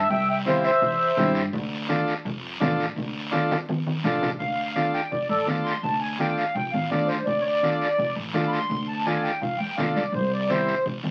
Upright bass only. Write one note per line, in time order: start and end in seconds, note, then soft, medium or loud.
0.10 0.67 C2 loud
0.82 1.11 E2 loud
1.17 1.46 G2 loud
1.53 2.11 D2 loud
2.25 2.54 F2 loud
2.61 2.90 A1 loud
2.96 3.54 D2 loud
3.69 3.97 F2 medium
4.04 4.33 A1 loud
4.39 4.97 D2 medium
5.12 5.26 F2 medium
5.29 5.44 A1 medium
5.47 5.76 D2 medium
5.83 6.41 D2 loud
6.55 6.69 F2 medium
6.74 6.88 A1 medium
6.91 7.20 D2 medium
7.27 7.84 D2 medium
7.98 8.13 F2 medium
8.16 8.31 A1 loud
8.33 8.63 D2 medium
8.70 9.27 D2 loud
9.41 9.56 F2 medium
9.60 9.76 E2 medium
9.78 9.94 D2 medium
9.96 10.12 C2 medium
10.12 10.70 C2 medium
10.86 11.00 E2 medium
11.03 11.11 G2 medium